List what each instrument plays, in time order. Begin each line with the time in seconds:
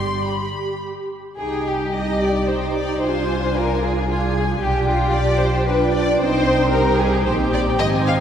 Already playing: double bass section G1, cello section G2, viola section G4, violin section C6
0.25 violin section B5
1.39 double bass section C2, viola section D#4 G4, violin section G#4 G5
1.67 violin section G4
1.93 viola section D#4 G4, cello section G4, violin section D#5 G5
2.21 violin section D5
2.49 cello section D#4, viola section D#4 G4, violin section C5 G5
2.76 violin section D5
3.02 double bass section C2, viola section D4 F4, cello section F4, violin section C5 G#5
3.57 violin section A#4
3.83 violin section G#4
4.09 viola section D4 F4, violin section F4 G#5, cello section G#4
4.36 violin section G#4
4.62 double bass section B1, viola section D4 F4, violin section G4 G5, cello section G4
4.89 violin section F4
5.14 viola section D4 F4, violin section D5 G5
5.41 violin section C5
5.68 cello section D4, viola section D4 F4, violin section B4 G5
5.94 violin section D5
6.20 double bass section C2, viola section C4 D#4, cello section D#4, violin section C5 G5
6.72 cello section G4, violin section A#4
7.00 violin section G#4
7.26 double bass section A#1, viola section C4 D#4, violin section C5 G5
7.53 violin section D5
7.79 double bass section G#1, viola section C4 D#4, violin section D#5 G#5
8.06 violin section F5